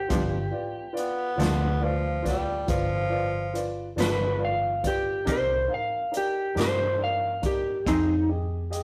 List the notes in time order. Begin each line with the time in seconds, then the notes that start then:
Already playing: G4
0.08 G1 G2 F3 B3 D4 F4 B4 D5, kick, closed hi-hat
0.51 F4 B4 D5
0.93 F4 B4 D5
0.97 B3, closed hi-hat
1.36 D2 B3 D4 F4 B4 D5, closed hi-hat
1.40 G2 F3, snare
1.80 F4 B4 D5
1.84 F3
2.22 F4 B4 D5, kick, closed hi-hat
2.28 G3, snare
2.67 G1 F3 F4 B4 D5, kick, closed hi-hat
3.10 F4 B4 D5
3.54 F4 B4 D5, closed hi-hat
3.96 G1 G2 F3 B3 D4 F4 B4 D5, closed hi-hat
4.00 B4, snare
4.38 F4 B4 D5
4.45 F5
4.83 F4 B4 D5, kick, closed hi-hat
4.87 G4
5.25 C2 C3 A#3 D#4 G4 A#4 D5, kick, closed hi-hat
5.32 C5
5.68 D#4 A#4 F5
5.74 F5
6.12 D#4 A#4 D5, closed hi-hat
6.17 G4
6.55 G2 A#3 D#4 G4 A#4 D5, closed hi-hat
6.59 C3 C5, snare
6.98 D#4 A#4 D5
7.04 F5
7.42 D#4 A#4 D5, kick, closed hi-hat
7.46 G4
7.85 F2 F3 C4 D#4 G4 G#4 D#5, kick, closed hi-hat
8.28 G4 G#4 D#5
8.70 G4 G#4 D#5, closed hi-hat